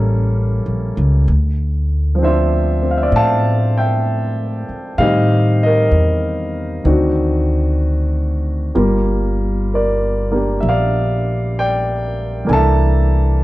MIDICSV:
0, 0, Header, 1, 4, 480
1, 0, Start_track
1, 0, Tempo, 927357
1, 658, Time_signature, 4, 2, 24, 8
1, 3061, Tempo, 937500
1, 6914, End_track
2, 0, Start_track
2, 0, Title_t, "Grand piano"
2, 0, Program_c, 0, 0
2, 0, Control_c, 0, 64, 127
2, 0, Note_on_c, 0, 55, 45
2, 0, Note_on_c, 0, 58, 41
2, 0, Note_on_c, 0, 61, 42
2, 0, Note_on_c, 0, 69, 49
2, 643, Note_off_c, 0, 55, 0
2, 655, Note_off_c, 0, 58, 0
2, 664, Note_off_c, 0, 61, 0
2, 664, Control_c, 0, 64, 0
2, 674, Note_off_c, 0, 69, 0
2, 764, Control_c, 0, 64, 127
2, 1113, Note_on_c, 0, 53, 42
2, 1131, Note_on_c, 0, 60, 35
2, 1151, Note_on_c, 0, 62, 40
2, 1155, Note_on_c, 0, 72, 46
2, 1161, Note_on_c, 0, 76, 61
2, 1165, Note_on_c, 0, 65, 40
2, 1453, Note_off_c, 0, 60, 0
2, 1461, Note_on_c, 0, 60, 35
2, 1486, Note_off_c, 0, 72, 0
2, 1506, Note_on_c, 0, 77, 48
2, 1520, Note_off_c, 0, 76, 0
2, 1531, Note_off_c, 0, 77, 0
2, 1540, Note_on_c, 0, 76, 51
2, 1563, Note_off_c, 0, 76, 0
2, 1568, Note_on_c, 0, 74, 52
2, 1591, Note_off_c, 0, 74, 0
2, 1594, Note_on_c, 0, 76, 53
2, 1619, Note_off_c, 0, 76, 0
2, 1635, Note_on_c, 0, 81, 78
2, 1640, Note_on_c, 0, 77, 53
2, 1933, Note_off_c, 0, 81, 0
2, 1935, Note_off_c, 0, 77, 0
2, 1954, Note_on_c, 0, 79, 59
2, 1959, Note_on_c, 0, 76, 52
2, 2410, Note_off_c, 0, 79, 0
2, 2412, Note_off_c, 0, 76, 0
2, 2566, Note_off_c, 0, 53, 0
2, 2576, Note_off_c, 0, 60, 0
2, 2579, Note_on_c, 0, 77, 76
2, 2584, Control_c, 0, 64, 0
2, 2585, Note_off_c, 0, 62, 0
2, 2585, Note_on_c, 0, 55, 35
2, 2587, Note_on_c, 0, 51, 39
2, 2588, Note_on_c, 0, 60, 36
2, 2590, Note_on_c, 0, 67, 47
2, 2591, Note_on_c, 0, 75, 60
2, 2592, Note_off_c, 0, 65, 0
2, 2681, Control_c, 0, 64, 127
2, 2892, Note_off_c, 0, 75, 0
2, 2915, Note_on_c, 0, 75, 67
2, 2917, Note_off_c, 0, 77, 0
2, 2931, Note_on_c, 0, 70, 53
2, 3528, Note_off_c, 0, 51, 0
2, 3532, Note_off_c, 0, 70, 0
2, 3534, Note_off_c, 0, 60, 0
2, 3535, Note_on_c, 0, 51, 42
2, 3541, Note_on_c, 0, 60, 36
2, 3544, Note_off_c, 0, 55, 0
2, 3545, Note_on_c, 0, 62, 37
2, 3547, Note_off_c, 0, 67, 0
2, 3547, Control_c, 0, 64, 0
2, 3547, Note_on_c, 0, 66, 43
2, 3652, Control_c, 0, 64, 127
2, 3854, Note_off_c, 0, 75, 0
2, 4505, Note_off_c, 0, 51, 0
2, 4508, Note_off_c, 0, 60, 0
2, 4510, Note_off_c, 0, 62, 0
2, 4511, Note_off_c, 0, 66, 0
2, 4513, Control_c, 0, 64, 0
2, 4513, Note_on_c, 0, 55, 42
2, 4515, Note_on_c, 0, 58, 35
2, 4515, Note_on_c, 0, 65, 36
2, 4521, Note_on_c, 0, 70, 41
2, 4614, Control_c, 0, 64, 127
2, 5012, Note_off_c, 0, 70, 0
2, 5020, Note_on_c, 0, 70, 42
2, 5026, Note_on_c, 0, 74, 50
2, 5307, Note_off_c, 0, 58, 0
2, 5315, Note_on_c, 0, 58, 31
2, 5325, Note_on_c, 0, 62, 28
2, 5330, Note_on_c, 0, 67, 33
2, 5442, Note_off_c, 0, 70, 0
2, 5463, Note_on_c, 0, 76, 49
2, 5478, Note_off_c, 0, 76, 0
2, 5479, Note_off_c, 0, 74, 0
2, 5505, Note_on_c, 0, 77, 62
2, 5508, Note_on_c, 0, 74, 47
2, 5947, Note_off_c, 0, 74, 0
2, 5967, Note_on_c, 0, 79, 70
2, 5973, Note_on_c, 0, 74, 53
2, 5979, Note_off_c, 0, 77, 0
2, 6391, Note_off_c, 0, 79, 0
2, 6393, Note_off_c, 0, 74, 0
2, 6406, Note_on_c, 0, 52, 44
2, 6409, Note_off_c, 0, 58, 0
2, 6413, Note_off_c, 0, 62, 0
2, 6417, Note_on_c, 0, 58, 37
2, 6421, Note_on_c, 0, 62, 37
2, 6427, Note_off_c, 0, 55, 0
2, 6427, Note_on_c, 0, 80, 51
2, 6428, Note_off_c, 0, 65, 0
2, 6430, Note_off_c, 0, 67, 0
2, 6431, Control_c, 0, 64, 0
2, 6436, Note_on_c, 0, 69, 47
2, 6437, Note_off_c, 0, 80, 0
2, 6447, Note_on_c, 0, 81, 76
2, 6457, Note_on_c, 0, 76, 52
2, 6530, Control_c, 0, 64, 127
2, 6914, Note_off_c, 0, 52, 0
2, 6914, Note_off_c, 0, 58, 0
2, 6914, Note_off_c, 0, 62, 0
2, 6914, Note_off_c, 0, 69, 0
2, 6914, Note_off_c, 0, 76, 0
2, 6914, Note_off_c, 0, 81, 0
2, 6914, End_track
3, 0, Start_track
3, 0, Title_t, "Upright bass"
3, 0, Program_c, 1, 32
3, 0, Note_on_c, 1, 33, 72
3, 319, Note_off_c, 1, 33, 0
3, 342, Note_on_c, 1, 34, 47
3, 489, Note_off_c, 1, 34, 0
3, 503, Note_on_c, 1, 37, 59
3, 649, Note_off_c, 1, 37, 0
3, 662, Note_on_c, 1, 38, 68
3, 1596, Note_off_c, 1, 38, 0
3, 1614, Note_on_c, 1, 45, 63
3, 2404, Note_off_c, 1, 45, 0
3, 2578, Note_on_c, 1, 45, 67
3, 3039, Note_off_c, 1, 45, 0
3, 3061, Note_on_c, 1, 40, 57
3, 3521, Note_off_c, 1, 40, 0
3, 3540, Note_on_c, 1, 38, 66
3, 4487, Note_off_c, 1, 38, 0
3, 4516, Note_on_c, 1, 31, 59
3, 5454, Note_off_c, 1, 31, 0
3, 5474, Note_on_c, 1, 34, 63
3, 6405, Note_off_c, 1, 34, 0
3, 6428, Note_on_c, 1, 36, 64
3, 6914, Note_off_c, 1, 36, 0
3, 6914, End_track
4, 0, Start_track
4, 0, Title_t, "Muted upright bass strokes"
4, 2427, Note_on_c, 9, 29, 30
4, 2478, Note_off_c, 9, 29, 0
4, 6914, End_track
0, 0, End_of_file